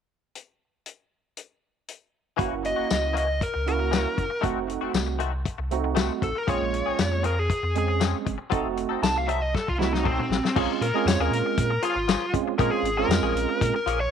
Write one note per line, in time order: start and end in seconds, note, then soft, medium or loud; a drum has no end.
0.35 closed hi-hat soft
0.86 closed hi-hat soft
1.37 closed hi-hat soft
1.88 closed hi-hat soft
2.37 2.50 F#1 loud
2.37 2.53 E3 medium
2.37 3.15 A#3 medium
2.37 2.54 A#3 medium
2.37 2.54 C#4 medium
2.37 3.15 C#4 medium
2.37 3.15 E4 medium
2.37 2.54 F#4 medium
2.37 3.15 F#4 medium
2.37 kick medium
2.37 closed hi-hat medium
2.53 2.73 F#1 medium
2.63 3.14 D#5 medium
2.63 muted clean electric guitar stroke soft
2.63 closed hi-hat soft
2.76 2.84 F#1 soft
2.76 2.88 A#3 soft
2.76 2.88 C#4 soft
2.76 2.88 F#4 soft
2.88 3.43 C#2 medium
2.88 muted clean electric guitar stroke soft
2.88 snare medium
2.88 closed hi-hat medium
2.88 tambourine medium
3.02 muted clean electric guitar stroke soft
3.13 3.28 E3 medium
3.13 3.27 A#3 medium
3.13 3.27 C#4 medium
3.13 3.26 F#4 medium
3.13 closed hi-hat medium
3.18 3.41 D#5 medium
3.27 muted clean electric guitar stroke soft
3.41 3.66 A#4 medium
3.41 kick medium
3.41 closed hi-hat medium
3.54 4.06 C#2 medium
3.54 muted clean electric guitar stroke soft
3.66 4.24 A#3 medium
3.66 4.24 C#4 medium
3.66 4.25 E4 medium
3.66 4.25 F#4 medium
3.66 4.42 A#4 medium
3.66 closed hi-hat medium
3.79 muted clean electric guitar stroke soft
3.91 4.07 E3 medium
3.91 4.07 A#3 medium
3.91 4.08 C#4 medium
3.91 4.08 F#4 medium
3.91 snare medium
3.91 closed hi-hat medium
3.91 tambourine medium
4.17 4.29 F#1 medium
4.17 muted clean electric guitar stroke soft
4.17 kick medium
4.17 closed hi-hat soft
4.30 muted clean electric guitar stroke soft
4.41 4.54 F1 loud
4.41 4.58 D#3 medium
4.41 4.58 A3 medium
4.41 5.19 A3 medium
4.41 4.58 C4 medium
4.41 5.20 C4 medium
4.41 5.20 D#4 medium
4.41 4.59 F#4 medium
4.41 5.20 F#4 medium
4.41 kick medium
4.41 closed hi-hat medium
4.56 4.77 F1 medium
4.67 muted clean electric guitar stroke soft
4.67 closed hi-hat medium
4.81 4.88 F1 soft
4.81 4.92 A3 soft
4.81 4.92 C4 soft
4.81 4.92 F#4 soft
4.93 5.46 C2 medium
4.93 muted clean electric guitar stroke soft
4.93 snare medium
4.93 closed hi-hat medium
4.93 tambourine medium
5.07 muted clean electric guitar stroke soft
5.19 5.32 D#3 medium
5.19 5.33 A3 medium
5.19 5.32 C4 medium
5.19 5.32 F#4 medium
5.19 closed hi-hat medium
5.33 muted clean electric guitar stroke soft
5.45 kick medium
5.45 closed hi-hat medium
5.58 6.10 C2 medium
5.58 muted clean electric guitar stroke soft
5.71 6.29 A3 medium
5.71 6.29 C4 medium
5.71 6.29 D#4 medium
5.71 6.29 F#4 medium
5.71 closed hi-hat soft
5.84 muted clean electric guitar stroke soft
5.95 6.11 D#3 medium
5.95 6.12 A3 medium
5.95 6.12 C4 medium
5.95 6.12 F#4 medium
5.95 snare medium
5.95 closed hi-hat medium
5.95 tambourine medium
6.21 6.33 A1 loud
6.21 6.38 A4 medium
6.21 muted clean electric guitar stroke soft
6.21 kick medium
6.21 closed hi-hat soft
6.35 6.49 A#4 medium
6.35 muted clean electric guitar stroke soft
6.47 6.59 A#1 loud
6.47 6.63 F3 medium
6.47 7.24 G#3 medium
6.47 7.24 A#3 medium
6.47 6.63 C4 medium
6.47 7.24 C#4 medium
6.47 6.64 C#4 medium
6.47 7.25 F4 medium
6.47 6.64 G#4 medium
6.47 7.22 C#5 medium
6.47 kick medium
6.47 closed hi-hat medium
6.61 6.82 A#1 medium
6.73 muted clean electric guitar stroke soft
6.73 closed hi-hat soft
6.86 6.93 A#1 soft
6.86 6.98 C4 soft
6.86 6.98 C#4 soft
6.86 6.98 G#4 soft
6.99 7.51 F2 medium
6.99 muted clean electric guitar stroke soft
6.99 snare loud
6.99 closed hi-hat medium
6.99 tambourine medium
7.12 muted clean electric guitar stroke soft
7.23 7.37 F3 medium
7.23 7.37 C4 medium
7.23 7.36 C#4 medium
7.23 7.36 G#4 medium
7.23 7.39 A#4 medium
7.23 closed hi-hat medium
7.37 7.74 G#4 medium
7.37 muted clean electric guitar stroke soft
7.50 kick medium
7.50 closed hi-hat medium
7.63 8.14 F2 medium
7.63 muted clean electric guitar stroke soft
7.75 8.33 G#3 medium
7.75 8.33 C4 medium
7.75 8.33 C#4 medium
7.75 8.34 G#4 medium
7.75 8.01 G#4 medium
7.75 closed hi-hat medium
7.88 muted clean electric guitar stroke soft
8.00 8.16 F3 medium
8.00 8.17 C4 medium
8.00 8.17 C#4 medium
8.00 8.17 G#4 medium
8.00 snare medium
8.00 closed hi-hat medium
8.00 tambourine medium
8.25 8.37 F#1 medium
8.25 muted clean electric guitar stroke soft
8.25 kick medium
8.25 closed hi-hat medium
8.38 muted clean electric guitar stroke soft
8.50 8.63 F1 loud
8.50 8.67 F#3 medium
8.50 9.28 A3 medium
8.50 8.67 C4 medium
8.50 9.28 C4 medium
8.50 8.67 D#4 medium
8.50 9.29 D#4 medium
8.50 9.29 F#4 medium
8.50 8.67 A4 medium
8.50 kick medium
8.50 closed hi-hat medium
8.65 8.86 F1 medium
8.77 muted clean electric guitar stroke soft
8.77 closed hi-hat medium
8.89 8.96 F1 soft
8.89 9.00 C4 soft
8.89 9.01 D#4 soft
8.89 9.01 A4 soft
9.01 9.55 C2 medium
9.01 9.16 A5 medium
9.01 muted clean electric guitar stroke soft
9.01 snare loud
9.01 closed hi-hat medium
9.01 tambourine loud
9.16 9.28 F5 medium
9.16 muted clean electric guitar stroke soft
9.27 9.41 F#3 medium
9.27 9.41 C4 medium
9.27 9.41 D#4 medium
9.27 9.40 A4 medium
9.27 9.42 E5 medium
9.27 closed hi-hat medium
9.41 9.53 D#5 medium
9.41 muted clean electric guitar stroke soft
9.55 9.68 A4 medium
9.55 kick medium
9.55 snare soft
9.67 10.19 C2 medium
9.67 9.79 F4 medium
9.67 muted clean electric guitar stroke soft
9.67 kick soft
9.78 10.37 A3 medium
9.78 10.37 C4 medium
9.78 10.37 D#4 medium
9.78 9.92 E4 medium
9.78 10.38 F#4 medium
9.78 snare medium
9.93 10.05 D#4 medium
9.93 muted clean electric guitar stroke soft
9.93 snare medium
10.04 10.20 F#3 medium
10.04 10.20 C4 medium
10.04 10.55 C4 medium
10.04 10.21 D#4 medium
10.04 10.21 A4 medium
10.04 kick medium
10.04 mid tom medium
10.19 mid tom medium
10.29 10.41 A1 medium
10.29 muted clean electric guitar stroke soft
10.29 snare medium
10.43 muted clean electric guitar stroke soft
10.43 snare medium
10.55 10.67 A#1 loud
10.55 10.71 F3 medium
10.55 10.84 G#3 medium
10.55 10.72 A#3 medium
10.55 10.85 C4 medium
10.55 10.85 C#4 medium
10.55 10.72 C#4 medium
10.55 10.85 F4 medium
10.55 10.72 G#4 medium
10.55 kick medium
10.55 crash medium
10.81 10.92 A#2 medium
10.81 11.06 A#4 medium
10.81 muted clean electric guitar stroke soft
10.81 closed hi-hat medium
10.94 11.71 G#3 medium
10.94 11.07 A#3 soft
10.94 11.71 C4 medium
10.94 11.72 C#4 medium
10.94 11.07 C#4 soft
10.94 11.72 F4 medium
10.94 11.07 G#4 soft
11.05 11.17 F2 medium
11.05 11.20 C#5 medium
11.05 muted clean electric guitar stroke soft
11.05 snare loud
11.05 closed hi-hat medium
11.05 tambourine loud
11.19 11.29 D#2 medium
11.19 11.31 F3 medium
11.19 11.32 A#3 medium
11.19 11.32 C#4 medium
11.19 11.32 G#4 medium
11.19 11.82 A#4 medium
11.31 11.42 A#2 medium
11.31 closed hi-hat medium
11.46 muted clean electric guitar stroke soft
11.57 11.79 A#2 loud
11.57 kick medium
11.57 closed hi-hat medium
11.70 muted clean electric guitar stroke soft
11.82 11.96 F3 medium
11.82 11.97 A#3 medium
11.82 11.97 C#4 medium
11.82 12.32 F4 medium
11.82 11.96 G#4 medium
11.82 closed hi-hat medium
11.96 12.17 G#1 medium
11.96 muted clean electric guitar stroke soft
12.08 12.24 F3 medium
12.08 12.24 A#3 medium
12.08 12.25 C#4 medium
12.08 12.25 G#4 medium
12.08 snare loud
12.08 closed hi-hat medium
12.08 tambourine loud
12.33 12.53 G#3 medium
12.33 12.53 C4 medium
12.33 12.53 C#4 medium
12.33 12.54 F4 medium
12.33 muted clean electric guitar stroke soft
12.33 kick medium
12.33 closed hi-hat medium
12.48 muted clean electric guitar stroke soft
12.58 12.70 A#2 medium
12.58 12.75 F3 medium
12.58 12.88 G#3 medium
12.58 12.75 A#3 medium
12.58 12.88 C4 medium
12.58 12.88 C#4 medium
12.58 12.76 C#4 medium
12.58 12.89 F4 medium
12.58 12.76 G#4 medium
12.58 12.71 A#4 medium
12.58 kick loud
12.58 closed hi-hat medium
12.71 12.97 G#4 medium
12.82 13.04 G#1 medium
12.82 muted clean electric guitar stroke soft
12.82 closed hi-hat medium
12.97 13.74 G#3 medium
12.97 13.09 A#3 soft
12.97 13.75 C4 medium
12.97 13.75 C#4 medium
12.97 13.09 C#4 soft
12.97 13.75 F4 medium
12.97 13.09 G#4 soft
12.97 13.72 A#4 medium
13.08 13.20 F2 medium
13.08 muted clean electric guitar stroke soft
13.08 snare loud
13.08 closed hi-hat medium
13.08 tambourine loud
13.22 13.33 A#1 loud
13.22 13.34 F3 medium
13.22 13.34 A#3 medium
13.22 13.35 C#4 medium
13.22 13.35 G#4 medium
13.34 13.46 A#1 loud
13.34 muted clean electric guitar stroke soft
13.34 closed hi-hat medium
13.49 muted clean electric guitar stroke soft
13.61 13.72 A#2 medium
13.61 kick medium
13.61 closed hi-hat medium
13.74 14.00 A#4 medium
13.74 muted clean electric guitar stroke soft
13.86 14.07 A#1 loud
13.86 14.00 F3 medium
13.86 14.00 A#3 medium
13.86 13.99 C#4 medium
13.86 13.99 G#4 medium
13.86 closed hi-hat medium
14.00 14.11 C#5 medium
14.00 muted clean electric guitar stroke soft